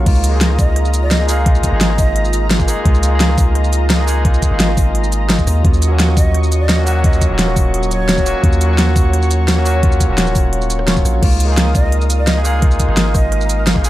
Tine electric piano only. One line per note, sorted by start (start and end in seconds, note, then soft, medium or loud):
0.04 0.28 G#3 medium
0.04 0.30 A#3 medium
0.04 0.31 D#4 medium
0.04 0.31 F4 loud
0.29 1.16 G#3 medium
0.29 1.17 A#3 medium
0.34 1.19 D#4 medium
0.34 1.20 G#4 loud
1.18 1.26 G#3 medium
1.18 1.26 A#3 medium
1.18 1.27 D#4 medium
1.18 1.27 G#4 medium
1.27 1.32 G#3 loud
1.27 1.33 A#3 medium
1.27 1.33 D#4 medium
1.27 1.34 G#4 loud
1.44 1.68 G#3 medium
1.44 1.70 A#3 medium
1.44 1.71 D#4 medium
1.44 1.71 F4 medium
1.69 2.56 G#3 medium
1.69 2.57 A#3 medium
1.74 2.58 D#4 medium
1.74 2.60 G#4 loud
2.58 2.65 G#3 medium
2.58 2.66 A#3 medium
2.58 2.66 D#4 medium
2.58 2.67 G#4 medium
2.66 2.72 G#3 loud
2.66 2.72 A#3 medium
2.66 2.73 D#4 medium
2.66 2.73 G#4 loud
2.84 3.07 G#3 medium
2.84 3.09 A#3 medium
2.84 3.10 D#4 medium
2.84 3.11 F4 medium
3.08 3.95 G#3 medium
3.08 3.97 A#3 medium
3.13 3.98 D#4 medium
3.13 3.99 G#4 loud
3.97 4.04 G#3 medium
3.97 4.05 A#3 medium
3.97 4.06 D#4 medium
3.97 4.06 G#4 loud
4.06 4.11 G#3 loud
4.06 4.12 A#3 medium
4.06 4.12 D#4 medium
4.06 4.13 G#4 loud
4.23 4.46 G#3 medium
4.23 4.48 A#3 medium
4.23 4.50 F4 medium
4.47 5.26 G#3 medium
4.47 5.27 A#3 medium
4.52 5.28 D#4 medium
4.52 5.29 G#4 loud
5.28 5.62 G#3 medium
5.28 5.62 A#3 medium
5.28 5.63 D#4 medium
5.28 5.63 F4 medium
5.63 5.86 F#3 medium
5.63 5.88 A#3 medium
5.63 5.89 C#4 medium
5.63 5.90 F4 medium
5.87 6.75 F#3 medium
5.87 6.76 A#3 medium
5.92 6.77 C#4 medium
5.92 6.78 F#4 loud
6.76 6.84 F#3 medium
6.76 6.84 A#3 medium
6.76 6.85 C#4 medium
6.76 6.85 F#4 loud
6.85 6.90 F#3 loud
6.85 6.91 A#3 medium
6.85 6.91 C#4 medium
6.85 6.92 F#4 loud
7.02 7.26 F#3 medium
7.02 7.28 A#3 medium
7.02 7.29 C#4 medium
7.02 7.29 F4 medium
7.27 8.14 F#3 medium
7.27 8.15 A#3 medium
7.32 8.16 C#4 medium
7.32 8.18 F#4 loud
8.16 8.23 F#3 medium
8.16 8.24 A#3 medium
8.16 8.24 C#4 medium
8.16 8.25 F#4 loud
8.24 8.30 F#3 loud
8.24 8.30 A#3 medium
8.24 8.31 C#4 medium
8.24 8.31 F#4 loud
8.42 8.65 F#3 medium
8.42 8.67 A#3 medium
8.42 8.68 C#4 medium
8.42 8.69 F4 medium
8.66 9.54 F#3 medium
8.66 9.55 A#3 medium
8.71 9.56 C#4 medium
8.71 9.57 F#4 loud
9.55 9.62 F#3 medium
9.55 9.63 A#3 medium
9.55 9.64 C#4 medium
9.55 9.64 F#4 loud
9.64 9.69 F#3 loud
9.64 9.70 A#3 medium
9.64 9.70 C#4 medium
9.64 9.71 F#4 loud
9.81 10.05 F#3 medium
9.81 10.07 A#3 medium
9.81 10.07 C#4 medium
9.81 10.08 F4 loud
10.06 10.84 F#3 medium
10.06 10.85 A#3 medium
10.10 10.87 C#4 medium
10.10 10.88 F#4 loud
10.86 11.20 F#3 medium
10.86 11.20 A#3 medium
10.86 11.21 C#4 medium
10.86 11.21 F4 medium
11.21 11.44 G#3 medium
11.21 11.46 A#3 medium
11.21 11.47 D#4 medium
11.21 11.48 F4 medium
11.45 12.33 G#3 medium
11.45 12.34 A#3 medium
11.50 12.35 D#4 medium
11.50 12.36 G#4 loud
12.34 12.42 G#3 medium
12.34 12.42 A#3 medium
12.34 12.43 D#4 medium
12.34 12.43 G#4 loud
12.43 12.48 G#3 medium
12.43 12.49 A#3 medium
12.43 12.49 D#4 medium
12.43 12.50 G#4 loud
12.60 12.84 G#3 medium
12.60 12.86 A#3 medium
12.60 12.87 D#4 medium
12.60 12.87 F4 medium
12.85 13.72 G#3 medium
12.85 13.73 A#3 medium
12.90 13.74 D#4 medium
12.90 13.76 G#4 loud
13.74 13.81 G#3 medium
13.74 13.82 A#3 medium
13.74 13.82 D#4 medium
13.74 13.83 G#4 loud
13.82 13.88 G#3 loud
13.82 13.88 A#3 medium
13.82 13.89 D#4 medium
13.82 13.89 G#4 loud